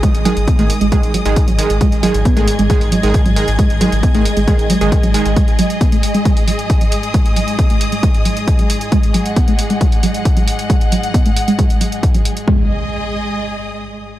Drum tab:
HH |xxoxxxoxxxoxxxox|xxoxxxoxxooxxxox|xxoxxxoxxxoxxxox|xxoxxxoxxooxxxox|
BD |o---o---o---o---|o---o---o---o---|o---o---o---o---|o---o---o---o---|

HH |xxoxxxoxxxoxxxox|xxoxxxoxxooxxxox|xxoxxxoxxxoxxxox|----------------|
BD |o---o---o---o---|o---o---o---o---|o---o---o---o---|o---------------|